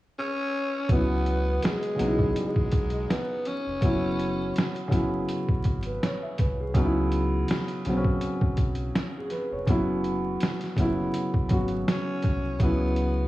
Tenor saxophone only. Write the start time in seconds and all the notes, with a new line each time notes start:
0.19 C#4
0.91 B3
1.64 G#3
2.37 G#3
3.10 B3
3.47 C#4
11.90 C#4
12.62 B3